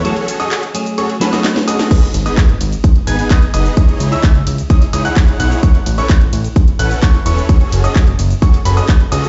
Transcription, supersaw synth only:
X:1
M:4/4
L:1/16
Q:1/4=129
K:G#phr
V:1 name="Supersaw synth"
[CFGAc]3 [CFGAd]2 z3 [CFGAc] z [CFGAB] [CFGAd] z2 [CFGAd]2 | [B,DGBd] z2 [B,DGBd] z6 [B,DGBg]2 [B,DGBd] z [B,DGBd]2 | [DEGcd]3 [DEGce]2 z3 [DEGcd] z [DEGcd] [DEGcf]3 [DEGcf]2 | [CEABc] z2 [CEABc] z6 [CEABf]2 [CEABc] z [CEABc]2 |
[CFGAc]3 [CFGAd]2 z3 [CFGAc] z [CFGAB] [CFGAd] z2 [CFGAd]2 |]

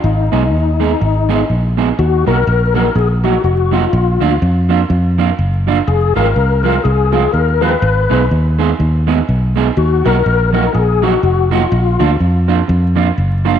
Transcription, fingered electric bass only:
X:1
M:4/4
L:1/8
Q:"Swing" 1/4=123
K:Ebm
V:1 name="Fingered electric bass" clef=bass
A,,, C,, E,,2 A,,,2 B,,,2 | E,, C,, B,,,2 B,,,2 F,,,2 | B,,, =D,, F,,2 F,,2 G,,,2 | F,,, A,,, =C,,2 C,,2 E,,2 |
A,,, C,, E,,2 E,,2 C,,2 | E,, C,, B,,,2 B,,,2 F,,,2 | B,,, =D,, F,,2 F,,2 G,,,2 |]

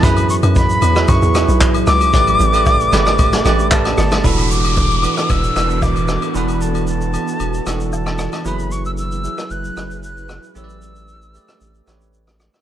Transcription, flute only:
X:1
M:4/4
L:1/16
Q:1/4=114
K:Edor
V:1 name="Flute"
b2 c'2 b4 c'4 z2 d'2- | d'12 a4 | b2 d'6 e'4 d'4 | b2 a2 a8 a4 |
b2 c' e' e'4 f'4 f'4 | e'12 z4 |]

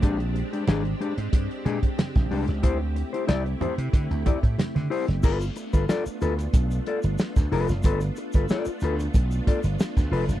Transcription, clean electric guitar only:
X:1
M:4/4
L:1/16
Q:1/4=92
K:Gmix
V:1 name="Clean electric guitar"
[_A,DG] z2 [A,DG] [A,D_A] z [A,DG] z3 [A,DA] z3 [A,DG] z | [EGc] z2 [EGc] [EGd] z [EGc] z3 [EGd] z3 [EGc] z | [FAB] z2 [FAB] [FAd] z [FAB] z3 [FAd] z3 [FAB] z | [FAB] z2 [FAB] [FAd] z [FAB] z3 [FAd] z3 [FAB] z |]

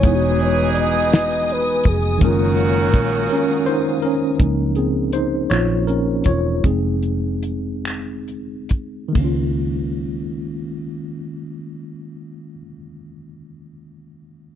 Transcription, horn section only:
X:1
M:6/8
L:1/8
Q:3/8=51
K:Db
V:1 name="Horn section"
[=E,^G,^D^G]4- [E,G,DG] z | [E,G,DG]4- [E,G,DG] z | z6 | z6 |
z6 | z6 |]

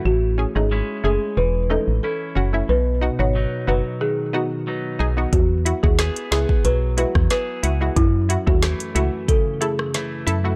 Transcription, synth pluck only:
X:1
M:4/4
L:1/16
Q:1/4=91
K:E
V:1 name="Synth pluck"
z2 [CG] [A,CD] z2 [A,CG] z3 [A,CD] z3 [CF] [A,CE] | z2 [DF] [B,DF] z2 [B,DF] z3 [B,DF] z3 [DG] [B,DF] | z2 [EF] [G,EF] z2 [G,EG] z3 [G,EF] z3 [EF] [G,EF] | z2 [EF] [A,EF] z2 [A,EF] z3 [A,EA] z3 [EA] [A,EF] |]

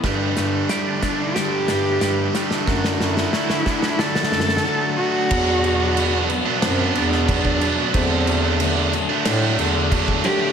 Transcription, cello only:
X:1
M:4/4
L:1/8
Q:1/4=91
K:Bphr
V:1 name="Cello"
z D3 G4 | z E3 A3 F- | F3 B, C D D2 | C2 z4 z G |]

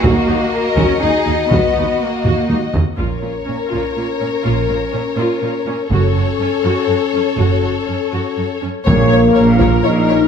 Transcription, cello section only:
X:1
M:3/4
L:1/8
Q:1/4=123
K:Gb
V:1 name="Cello section" clef=bass
B,3 D E2 | C2 B,2 z2 | B,, B,, B,, B,, B,, B,, | B,, B,, B,, B,, B,, B,, |
G,, G,, G,, G,, G,, G,, | G,, G,, G,, G,, G,, G,, | B,,2 B,,2 B,,2 |]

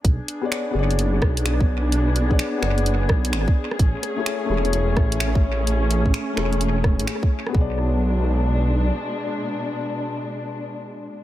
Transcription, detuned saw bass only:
X:1
M:4/4
L:1/16
Q:"Swing 16ths" 1/4=128
K:Bdor
V:1 name="Detuned saw bass" clef=bass
B,,, z4 z F,,,4 B,,,2 B,,,4- | B,,,4 z2 F,,,4 B,,,2 G,,, z3 | A,,, z4 z E,,,4 A,,,2 A,,,4- | A,,,4 z2 E,,,4- E,,, A,,, z4 |
B,,,12 z4 | z16 |]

